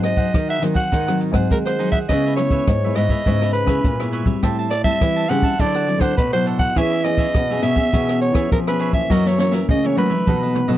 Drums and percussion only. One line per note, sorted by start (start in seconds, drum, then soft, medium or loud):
0.03 cross-stick medium
0.03 closed hi-hat soft
0.17 kick medium
0.34 kick medium
0.34 cross-stick medium
0.34 closed hi-hat medium
0.63 cross-stick medium
0.63 closed hi-hat soft
0.75 kick medium
0.92 kick medium
0.92 closed hi-hat medium
1.08 cross-stick medium
1.08 closed hi-hat soft
1.21 closed hi-hat medium
1.34 kick medium
1.34 cross-stick medium
1.34 closed hi-hat soft
1.51 kick medium
1.51 closed hi-hat medium
1.67 cross-stick medium
1.67 closed hi-hat soft
1.80 closed hi-hat soft
1.92 kick medium
1.92 closed hi-hat soft
2.09 kick medium
2.09 cross-stick medium
2.09 closed hi-hat medium
2.37 cross-stick medium
2.37 closed hi-hat soft
2.50 kick medium
2.50 closed hi-hat soft
2.67 kick medium
2.67 cross-stick medium
2.67 closed hi-hat medium
2.95 cross-stick medium
2.95 closed hi-hat soft
3.09 kick medium
3.09 closed hi-hat soft
3.26 kick medium
3.26 closed hi-hat medium
3.42 cross-stick medium
3.42 closed hi-hat soft
3.54 closed hi-hat medium
3.67 kick medium
3.67 cross-stick medium
3.67 closed hi-hat soft
3.84 kick medium
3.84 closed hi-hat medium
4.00 cross-stick medium
4.13 closed hi-hat soft
4.26 kick medium
4.26 closed hi-hat soft
4.43 kick medium
4.43 cross-stick medium
4.43 closed hi-hat medium
4.71 cross-stick medium
4.71 closed hi-hat soft
4.84 kick medium
5.01 kick medium
5.01 cross-stick medium
5.01 closed hi-hat medium
5.29 cross-stick medium
5.29 closed hi-hat medium
5.42 kick medium
5.59 kick medium
5.59 closed hi-hat medium
5.74 cross-stick medium
5.74 closed hi-hat soft
5.88 closed hi-hat medium
6.01 kick medium
6.01 cross-stick medium
6.01 closed hi-hat soft
6.18 kick medium
6.18 closed hi-hat medium
6.33 cross-stick medium
6.33 closed hi-hat soft
6.46 closed hi-hat medium
6.59 kick medium
6.59 closed hi-hat soft
6.76 kick medium
6.76 cross-stick medium
6.76 closed hi-hat medium
7.04 cross-stick medium
7.04 closed hi-hat soft
7.17 kick medium
7.17 closed hi-hat soft
7.34 kick medium
7.34 cross-stick medium
7.34 closed hi-hat medium
7.62 cross-stick medium
7.62 closed hi-hat soft
7.76 kick medium
7.76 closed hi-hat soft
7.93 kick medium
7.93 closed hi-hat medium
8.09 cross-stick medium
8.09 closed hi-hat soft
8.21 closed hi-hat medium
8.35 kick medium
8.35 cross-stick medium
8.35 closed hi-hat soft
8.52 kick medium
8.52 closed hi-hat medium
8.68 cross-stick medium
8.80 closed hi-hat soft
8.93 kick medium
8.93 closed hi-hat soft
9.10 kick medium
9.10 snare soft
9.26 snare soft
9.38 snare medium
9.52 snare soft
9.69 kick medium
9.69 high tom medium
9.84 high tom medium
9.97 high tom medium
10.10 mid tom medium
10.27 kick medium
10.27 mid tom medium
10.43 mid tom medium
10.55 mid tom medium
10.68 mid tom medium